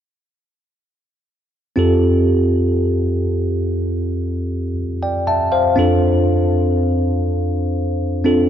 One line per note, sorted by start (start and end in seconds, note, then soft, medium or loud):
1.76 5.73 F2 soft
1.76 4.72 C4 soft
1.76 4.73 F4 soft
1.76 4.73 G4 soft
1.76 4.74 A4 medium
5.03 5.26 D5 soft
5.03 5.26 G5 soft
5.27 5.51 E5 soft
5.27 5.51 A5 soft
5.52 5.99 C5 soft
5.52 5.99 F5 soft
5.76 8.49 F2 medium
5.76 8.20 C4 medium
5.76 8.21 D4 soft
5.76 8.21 F4 soft
5.76 8.22 A4 medium
8.24 8.49 C4 soft
8.24 8.49 D4 soft
8.24 8.49 F4 soft
8.24 8.49 A4 soft